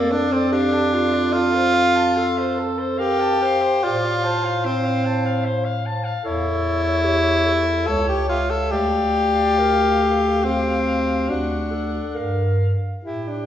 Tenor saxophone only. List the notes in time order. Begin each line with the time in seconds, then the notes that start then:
Already playing: A#3
0.11 D4
0.32 C4
0.52 D4
1.33 F4
2.98 G4
3.84 F4
4.65 C4
6.24 E4
7.87 A4
8.08 G4
8.29 F4
8.50 A4
8.71 G4
10.44 C4
11.29 D4
13.04 E4
13.28 D4